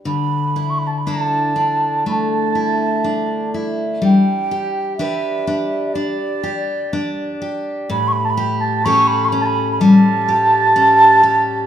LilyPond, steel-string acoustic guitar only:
\new Staff \with { instrumentName = "Steel-string acoustic guitar" } { \time 4/4 \key g \lydian \tempo 4 = 62 d8 e'8 <d' e' a'>8 d'8 a8 e'8 d'8 e'8 | g8 g'8 <d' g' b'>8 d'8 d'8 g'8 d'8 g'8 | a,8 g'8 <cis' g' a'>8 cis'8 g8 g'8 cis'8 g'8 | }